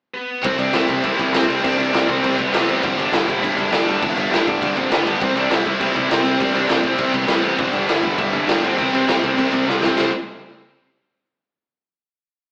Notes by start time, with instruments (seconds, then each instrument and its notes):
0.14 lead electric guitar B3 B4
0.44 picked electric bass C2, overdriven electric guitar C3 G3 C4, lead electric guitar C4 C5, kick, crash
0.59 picked electric bass C2, overdriven electric guitar C3 G3 C4, lead electric guitar D4 D5, crash
0.73 picked electric bass C2, overdriven electric guitar C3 G3 C4, lead electric guitar E4 E5, snare, crash
0.88 picked electric bass C2, overdriven electric guitar C3 G3 C4, kick, crash
1.04 picked electric bass C2, overdriven electric guitar C3 G3 C4, lead electric guitar E4 E5, kick, crash
1.19 picked electric bass C2, overdriven electric guitar C3 G3 C4, kick, crash
1.33 picked electric bass C2, overdriven electric guitar C3 G3 C4, lead electric guitar C4, snare, crash
1.37 lead electric guitar C5
1.48 picked electric bass C2, overdriven electric guitar C3 G3 C4, crash
1.63 picked electric bass C2, overdriven electric guitar C3 G3 C4, lead electric guitar D4 D5, kick, crash
1.77 picked electric bass C2, overdriven electric guitar C3 G3 C4, crash
1.93 picked electric bass C2, overdriven electric guitar C3 G3 C4, snare, crash
2.08 picked electric bass C2, overdriven electric guitar C3 G3 C4, lead electric guitar C4 C5, kick, crash
2.23 picked electric bass C2, overdriven electric guitar C3 G3 C4, kick, crash
2.38 picked electric bass C2, overdriven electric guitar C3 G3 C4, lead electric guitar B3 B4, kick, crash
2.52 picked electric bass C2, overdriven electric guitar C3 G3 C4, lead electric guitar B3 B4, snare, crash
2.67 picked electric bass A1, overdriven electric guitar C3 G3 C4, crash
2.83 picked electric bass G1, overdriven electric guitar G2 D3 G3, lead electric guitar C4 C5, kick, crash
2.97 picked electric bass G1, overdriven electric guitar G2 D3 G3, lead electric guitar D4, crash
3.02 lead electric guitar D5
3.12 picked electric bass G1, overdriven electric guitar G2 D3 G3, lead electric guitar E4 E5, snare, crash
3.27 picked electric bass G1, overdriven electric guitar G2 D3 G3, kick, crash
3.42 picked electric bass G1, overdriven electric guitar G2 D3 G3, lead electric guitar E4 E5, kick, crash
3.57 picked electric bass G1, overdriven electric guitar G2 D3 G3, kick, crash
3.71 picked electric bass G1, overdriven electric guitar G2 D3 G3, lead electric guitar D4 D5, snare, crash
3.85 picked electric bass G1, overdriven electric guitar G2 D3 G3, crash
4.01 picked electric bass G1, overdriven electric guitar G2 D3 G3, lead electric guitar E4 E5, kick, crash
4.16 picked electric bass G1, overdriven electric guitar G2 D3 G3, crash
4.31 picked electric bass G1, overdriven electric guitar G2 D3 G3, snare, crash
4.46 picked electric bass G1, overdriven electric guitar G2 D3 G3, lead electric guitar D4 D5, kick, crash
4.62 picked electric bass G1, overdriven electric guitar G2 D3 G3, kick, crash
4.76 picked electric bass G1, overdriven electric guitar G2 D3 G3, lead electric guitar C4 C5, kick, crash
4.90 picked electric bass G1, overdriven electric guitar G2 D3 G3, lead electric guitar B3, snare, crash
4.94 lead electric guitar B4
5.05 picked electric bass G1, overdriven electric guitar G2 D3 G3, crash
5.20 picked electric bass C2, overdriven electric guitar C3 G3 C4, lead electric guitar C4, kick, crash
5.24 lead electric guitar C5
5.35 picked electric bass C2, overdriven electric guitar C3 G3 C4, lead electric guitar D4 D5, crash
5.50 picked electric bass C2, overdriven electric guitar C3 G3 C4, lead electric guitar E4 E5, snare, crash
5.65 picked electric bass C2, overdriven electric guitar C3 G3 C4, kick, crash
5.80 picked electric bass C2, overdriven electric guitar C3 G3 C4, lead electric guitar E4 E5, kick, crash
5.95 picked electric bass C2, overdriven electric guitar C3 G3 C4, kick, crash
6.09 picked electric bass C2, overdriven electric guitar C3 G3 C4, lead electric guitar C4, snare, crash
6.14 lead electric guitar C5
6.24 picked electric bass C2, overdriven electric guitar C3 G3 C4, crash
6.39 picked electric bass C2, overdriven electric guitar C3 G3 C4, lead electric guitar D4 D5, kick, crash
6.54 picked electric bass C2, overdriven electric guitar C3 G3 C4, crash
6.69 picked electric bass C2, overdriven electric guitar C3 G3 C4, snare, crash
6.83 picked electric bass C2, overdriven electric guitar C3 G3 C4, lead electric guitar C4 C5, kick, crash
6.98 picked electric bass C2, overdriven electric guitar C3 G3 C4, kick, crash
7.13 picked electric bass C2, overdriven electric guitar C3 G3 C4, lead electric guitar B3 B4, kick, crash
7.27 picked electric bass C2, overdriven electric guitar C3 G3 C4, lead electric guitar B3 B4, snare, crash
7.42 picked electric bass A1, overdriven electric guitar C3 G3 C4, crash
7.58 picked electric bass G1, overdriven electric guitar G2 D3 G3, lead electric guitar C4 C5, kick, crash
7.70 picked electric bass G1, overdriven electric guitar G2 D3 G3, lead electric guitar D4 D5, crash
7.86 picked electric bass G1, overdriven electric guitar G2 D3 G3, lead electric guitar E4 E5, snare, crash
8.03 picked electric bass G1, overdriven electric guitar G2 D3 G3, kick, crash
8.17 picked electric bass G1, overdriven electric guitar G2 D3 G3, lead electric guitar E4 E5, kick, crash
8.33 picked electric bass G1, overdriven electric guitar G2 D3 G3, kick, crash
8.47 picked electric bass G1, overdriven electric guitar G2 D3 G3, lead electric guitar D4 D5, snare, crash
8.62 picked electric bass G1, overdriven electric guitar G2 D3 G3, lead electric guitar C4 C5, crash
8.78 picked electric bass C2, overdriven electric guitar C3 G3 C4, kick, crash
8.93 picked electric bass C2, overdriven electric guitar C3 G3 C4, crash
9.08 picked electric bass C2, overdriven electric guitar C3 G3 C4, snare, crash
9.23 picked electric bass C2, overdriven electric guitar C3 G3 C4, kick, crash
9.37 picked electric bass C2, overdriven electric guitar C3 G3 C4, kick, crash
9.53 picked electric bass C2, overdriven electric guitar C3 G3 C4, kick, crash
9.68 picked electric bass C2, overdriven electric guitar C3 G3 C4, snare
9.83 picked electric bass C2, overdriven electric guitar C3 G3 C4, snare
9.97 picked electric bass C2, overdriven electric guitar C3 G3 C4, lead electric guitar C5, snare, crash